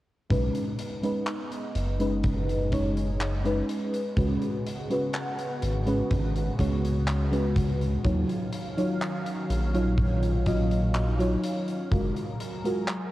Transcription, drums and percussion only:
0.31 kick, closed hi-hat
0.55 closed hi-hat
0.79 closed hi-hat
1.03 closed hi-hat
1.27 clap, closed hi-hat
1.52 closed hi-hat
1.75 closed hi-hat
2.00 closed hi-hat
2.24 kick, closed hi-hat
2.49 closed hi-hat
2.72 kick, closed hi-hat
2.97 closed hi-hat
3.20 clap, closed hi-hat
3.45 closed hi-hat
3.69 closed hi-hat
3.94 closed hi-hat
4.17 kick, closed hi-hat
4.42 closed hi-hat
4.66 closed hi-hat
4.90 closed hi-hat
5.13 clap, closed hi-hat
5.39 closed hi-hat
5.62 closed hi-hat
5.87 closed hi-hat
6.11 kick, closed hi-hat
6.36 closed hi-hat
6.59 kick, closed hi-hat
6.85 closed hi-hat
7.08 clap, closed hi-hat
7.33 closed hi-hat
7.56 kick, closed hi-hat
7.81 closed hi-hat
8.05 kick, closed hi-hat
8.29 closed hi-hat
8.53 closed hi-hat
8.78 closed hi-hat
9.02 clap, closed hi-hat
9.26 closed hi-hat
9.50 closed hi-hat
9.74 closed hi-hat
9.98 kick, closed hi-hat
10.23 closed hi-hat
10.46 kick, closed hi-hat
10.71 closed hi-hat
10.95 clap, closed hi-hat
11.20 closed hi-hat
11.44 closed hi-hat
11.68 closed hi-hat
11.92 kick, closed hi-hat
12.16 closed hi-hat
12.40 closed hi-hat
12.65 closed hi-hat
12.88 clap, closed hi-hat

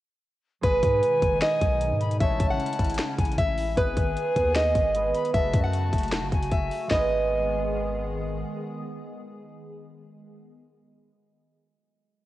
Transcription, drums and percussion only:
0.64 kick, closed hi-hat
0.83 kick, closed hi-hat
1.03 closed hi-hat
1.22 kick, closed hi-hat
1.42 finger snap, snare, closed hi-hat
1.61 kick, closed hi-hat
1.81 closed hi-hat
2.01 closed hi-hat
2.11 closed hi-hat
2.20 kick, closed hi-hat
2.40 kick, closed hi-hat
2.60 closed hi-hat
2.66 closed hi-hat
2.73 closed hi-hat
2.79 kick, closed hi-hat
2.84 closed hi-hat
2.90 closed hi-hat
2.94 closed hi-hat
2.99 finger snap, snare, closed hi-hat
3.18 kick, closed hi-hat
3.25 closed hi-hat
3.32 closed hi-hat
3.38 kick, closed hi-hat
3.58 open hi-hat
3.77 kick, closed hi-hat
3.97 kick, closed hi-hat
4.17 closed hi-hat
4.36 kick, closed hi-hat
4.55 finger snap, snare, closed hi-hat
4.75 kick, closed hi-hat
4.95 closed hi-hat
5.14 closed hi-hat
5.25 closed hi-hat
5.34 kick, closed hi-hat
5.53 kick, closed hi-hat
5.73 closed hi-hat
5.93 kick, closed hi-hat
5.98 closed hi-hat
6.03 closed hi-hat
6.08 closed hi-hat
6.12 finger snap, snare, closed hi-hat
6.32 kick, closed hi-hat
6.42 closed hi-hat
6.52 kick, closed hi-hat
6.71 open hi-hat
6.91 kick, snare, clap

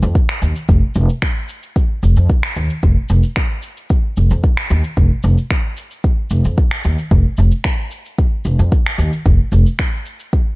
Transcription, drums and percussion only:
0.03 shaker
0.15 kick, shaker
0.29 finger snap
0.42 shaker
0.56 shaker
0.69 kick, shaker
0.95 shaker
1.09 shaker
1.22 finger snap, kick, shaker
1.49 shaker
1.63 shaker
1.76 kick, shaker
2.03 shaker
2.16 shaker
2.29 kick, shaker
2.43 finger snap
2.56 shaker
2.70 shaker
2.83 kick, shaker
3.09 shaker
3.23 shaker
3.36 finger snap, kick, shaker
3.63 shaker
3.77 shaker
3.90 kick, shaker
4.17 shaker
4.30 shaker
4.44 kick, shaker
4.57 finger snap
4.70 shaker
4.84 shaker
4.97 kick, shaker
5.23 shaker
5.38 shaker
5.51 finger snap, kick, shaker
5.77 shaker
5.91 shaker
6.04 kick, shaker
6.30 shaker
6.45 shaker
6.58 kick, shaker
6.71 finger snap
6.84 shaker
6.98 shaker
7.11 kick, shaker
7.37 shaker
7.52 shaker
7.64 finger snap, kick, shaker
7.91 shaker
8.06 shaker
8.18 kick, shaker
8.45 shaker
8.59 shaker
8.72 kick, shaker
8.86 finger snap
8.99 shaker
9.13 shaker
9.26 kick, shaker
9.52 shaker
9.66 shaker
9.79 finger snap, kick, shaker
10.06 shaker
10.20 shaker
10.33 kick, shaker

